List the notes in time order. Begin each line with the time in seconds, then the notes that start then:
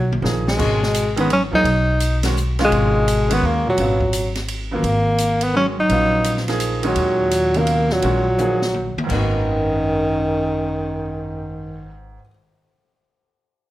Already playing: B1 A#2 F#3
0.12 high tom
0.22 A#1 F3 A#3 D#4 G#4, snare
0.46 B2 G#3, snare
0.57 G#1 D#3 G#3 C#4 F#4, kick, crash
0.83 snare
0.94 hi-hat pedal, ride
1.16 D#3 G#3 B3 C#4 D#4, ride
1.30 F#3 C#4, ride
1.51 F3 F#3 A#3 D#4 G#4, kick
1.64 B1, ride
2.00 hi-hat pedal, ride
2.23 D#3 G#3 C#4 F#4, snare, ride
2.37 hi-hat pedal
2.59 D#3 G#3 C#4 F4, snare, ride
2.63 B2 G#3
2.71 G#1, ride
3.08 hi-hat pedal, ride
3.29 D#3 G#3 C#4 F#4, ride
3.34 B3
3.42 D#2 D#3
3.47 A#3
3.67 A#2 F#3
3.77 G#1 C#3 F#3 B3 F4, ride
4.00 kick
4.13 hi-hat pedal, ride
4.35 snare, ride
4.48 ride
4.71 C#3 D#3 F#3 A#3 B3 F4
4.83 G#1, ride
5.18 hi-hat pedal, ride
5.41 D#3 B3, ride
5.54 D#3 F#3 G#3 C#4 F#4
5.78 F#3 D#4
5.89 A#1 C#3 F#3 B3 F4, ride
6.24 hi-hat pedal, ride
6.37 snare
6.48 F3 A#3 D#4 G#4, snare, ride
6.60 hi-hat pedal, ride
6.83 A#2 D#3 G#3 C#4 D#4, ride
6.87 F#3
6.95 D#2, ride
7.31 hi-hat pedal, ride
7.54 B2 C#3 D#3 F#3 A#3 F4, ride
7.67 ride
7.90 A#2 F#3, snare
8.02 A#1 D#3 G#3 C#4 F#4, ride
8.38 F3 A#3 D#4 G#4, hi-hat pedal, high tom
8.62 snare
8.74 high tom
8.96 muted upright bass stroke, high tom
9.04 G#2 D#3
9.08 G#1 F#2 D#3 A#3, kick, crash
9.13 B3 F#4
9.32 cymbal swell